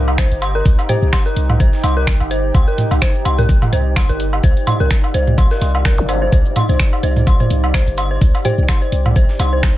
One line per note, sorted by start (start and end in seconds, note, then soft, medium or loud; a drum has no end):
0.00 0.28 C2 loud
0.00 9.78 D#4 medium
0.00 9.78 G4 medium
0.00 2.13 C5 medium
0.00 3.68 G5 medium
0.08 low woodblock soft
0.18 0.22 C5 loud
0.18 finger snap medium
0.18 kick loud
0.18 snare loud
0.18 closed hi-hat medium
0.18 shaker medium
0.31 0.63 G1 loud
0.31 closed hi-hat soft
0.31 shaker soft
0.42 0.48 C6 loud
0.42 closed hi-hat loud
0.42 closed hi-hat medium
0.42 low woodblock soft
0.55 0.60 A#4 loud
0.65 0.76 C2 loud
0.65 kick loud
0.65 closed hi-hat medium
0.65 shaker medium
0.79 closed hi-hat soft
0.79 low woodblock soft
0.79 shaker soft
0.89 1.26 G4 medium
0.89 0.93 C5 loud
0.89 closed hi-hat medium
0.89 mid tom medium
1.02 1.11 C2 loud
1.02 shaker soft
1.13 1.19 C6 loud
1.13 finger snap loud
1.13 kick loud
1.13 snare loud
1.13 closed hi-hat medium
1.13 low woodblock soft
1.13 shaker medium
1.26 1.31 A#4 loud
1.26 shaker soft
1.36 1.69 C2 medium
1.36 closed hi-hat loud
1.36 closed hi-hat medium
1.50 mid tom medium
1.50 low woodblock soft
1.60 1.64 C5 loud
1.60 kick loud
1.60 closed hi-hat medium
1.60 shaker medium
1.73 snare medium
1.73 shaker soft
1.84 2.17 C2 loud
1.84 1.90 C6 loud
1.84 snare soft
1.84 closed hi-hat loud
1.84 closed hi-hat medium
1.84 low woodblock soft
1.97 2.02 A#4 loud
1.97 9.78 D5 medium
2.07 finger snap loud
2.07 kick loud
2.07 snare loud
2.07 closed hi-hat medium
2.07 shaker medium
2.20 2.52 G1 loud
2.20 closed hi-hat soft
2.20 low woodblock soft
2.20 shaker soft
2.31 2.34 C5 loud
2.31 closed hi-hat loud
2.31 closed hi-hat medium
2.54 2.65 C2 loud
2.54 2.60 C6 loud
2.54 kick loud
2.54 closed hi-hat medium
2.54 low woodblock soft
2.54 shaker medium
2.68 2.72 A#4 loud
2.68 shaker soft
2.78 closed hi-hat loud
2.78 closed hi-hat medium
2.78 mid tom medium
2.91 3.00 C2 loud
2.91 closed hi-hat soft
2.91 low woodblock soft
2.91 shaker soft
3.02 3.05 C5 loud
3.02 finger snap loud
3.02 kick loud
3.02 snare loud
3.02 closed hi-hat medium
3.02 shaker medium
3.15 shaker soft
3.25 3.58 C2 medium
3.25 3.31 C6 loud
3.25 closed hi-hat loud
3.25 closed hi-hat medium
3.25 low woodblock soft
3.38 3.43 A#4 loud
3.38 closed hi-hat soft
3.38 mid tom medium
3.49 kick loud
3.49 closed hi-hat medium
3.49 shaker medium
3.62 7.46 F5 medium
3.62 mid tom loud
3.62 low woodblock soft
3.62 shaker soft
3.73 4.06 C2 loud
3.73 3.76 C5 loud
3.73 closed hi-hat loud
3.73 closed hi-hat medium
3.96 4.02 C6 loud
3.96 finger snap loud
3.96 kick loud
3.96 snare loud
3.96 closed hi-hat medium
3.96 low woodblock soft
3.96 shaker medium
4.09 4.41 G1 loud
4.09 4.14 A#4 loud
4.09 closed hi-hat soft
4.09 shaker soft
4.20 closed hi-hat loud
4.20 closed hi-hat medium
4.33 low woodblock soft
4.44 4.54 C2 loud
4.44 4.47 C5 loud
4.44 kick loud
4.44 closed hi-hat medium
4.44 shaker medium
4.57 closed hi-hat soft
4.57 shaker soft
4.67 4.73 C6 loud
4.67 closed hi-hat medium
4.67 mid tom medium
4.67 low woodblock soft
4.80 4.89 C2 loud
4.80 4.85 A#4 loud
4.80 shaker soft
4.91 finger snap medium
4.91 kick loud
4.91 snare loud
4.91 closed hi-hat medium
4.91 shaker medium
5.04 low woodblock soft
5.04 shaker soft
5.14 5.47 C2 medium
5.14 5.18 C5 loud
5.14 closed hi-hat loud
5.14 closed hi-hat medium
5.27 closed hi-hat soft
5.27 mid tom medium
5.38 5.44 C6 loud
5.38 kick loud
5.38 closed hi-hat medium
5.38 low woodblock soft
5.38 shaker medium
5.51 5.56 A#4 loud
5.51 snare medium
5.51 shaker soft
5.61 5.95 C2 loud
5.61 5.65 C6 medium
5.61 snare soft
5.61 closed hi-hat medium
5.75 low woodblock soft
5.85 5.91 A#4 loud
5.85 finger snap medium
5.85 kick loud
5.85 snare loud
5.85 closed hi-hat medium
5.85 shaker medium
5.98 6.29 G1 medium
5.98 closed hi-hat soft
5.98 zap medium
5.98 shaker soft
6.09 6.18 C5 medium
6.09 closed hi-hat loud
6.09 closed hi-hat medium
6.09 low woodblock soft
6.22 6.29 C5 loud
6.32 6.43 C2 loud
6.32 6.36 C5 loud
6.32 kick loud
6.32 closed hi-hat medium
6.32 shaker medium
6.45 shaker soft
6.56 6.62 C6 loud
6.56 closed hi-hat medium
6.56 mid tom medium
6.56 low woodblock soft
6.69 6.78 C2 loud
6.69 6.74 C5 medium
6.69 closed hi-hat soft
6.69 shaker soft
6.80 finger snap medium
6.80 kick loud
6.80 snare loud
6.80 closed hi-hat medium
6.80 shaker medium
6.93 low woodblock soft
6.93 shaker soft
7.03 7.36 C2 medium
7.03 7.07 C5 loud
7.03 closed hi-hat medium
7.16 closed hi-hat soft
7.16 mid tom medium
7.27 7.33 C6 loud
7.27 kick loud
7.27 closed hi-hat medium
7.27 low woodblock soft
7.27 shaker medium
7.40 7.45 C5 medium
7.40 9.78 G5 medium
7.40 mid tom medium
7.40 shaker soft
7.50 7.84 C2 loud
7.50 closed hi-hat medium
7.64 low woodblock soft
7.74 7.78 C5 loud
7.74 finger snap medium
7.74 kick loud
7.74 snare loud
7.74 closed hi-hat medium
7.74 shaker medium
7.87 8.18 G1 loud
7.87 closed hi-hat soft
7.87 shaker soft
7.98 8.04 C6 loud
7.98 closed hi-hat loud
7.98 closed hi-hat medium
7.98 low woodblock soft
8.11 8.16 C5 medium
8.21 8.32 C2 loud
8.21 kick loud
8.21 closed hi-hat medium
8.21 shaker medium
8.34 closed hi-hat soft
8.34 low woodblock soft
8.34 shaker soft
8.45 8.82 G4 medium
8.45 8.49 C5 loud
8.45 closed hi-hat medium
8.45 mid tom medium
8.58 8.67 C2 loud
8.58 shaker soft
8.69 8.75 C6 loud
8.69 finger snap medium
8.69 kick loud
8.69 snare loud
8.69 closed hi-hat medium
8.69 low woodblock soft
8.69 shaker medium
8.82 8.87 C5 medium
8.82 shaker soft
8.92 9.25 C2 medium
8.92 closed hi-hat medium
9.06 mid tom medium
9.06 low woodblock soft
9.16 9.20 C5 loud
9.16 kick loud
9.16 closed hi-hat medium
9.16 shaker medium
9.29 snare medium
9.29 shaker soft
9.39 9.73 C2 loud
9.39 9.46 C6 loud
9.39 snare soft
9.39 closed hi-hat medium
9.39 low woodblock soft
9.53 9.58 C5 medium
9.63 finger snap medium
9.63 kick loud
9.63 snare loud
9.63 closed hi-hat medium
9.63 shaker medium